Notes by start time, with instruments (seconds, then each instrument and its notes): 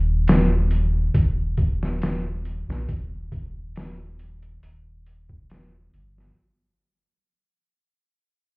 Already playing: sub bass D#1
0.28 snare, open hi-hat
0.71 open hi-hat
1.14 sub bass D#1, kick, open hi-hat
1.57 kick, open hi-hat
1.83 snare
2.02 snare, open hi-hat
2.45 open hi-hat
2.68 sub bass A#1, snare
2.88 sub bass D#1, kick, open hi-hat
3.32 kick, open hi-hat
3.76 snare, open hi-hat
4.19 open hi-hat
4.42 closed hi-hat
4.63 sub bass D#1, open hi-hat
5.06 open hi-hat
5.29 kick
5.50 snare, open hi-hat
5.93 sub bass G1, open hi-hat
6.18 snare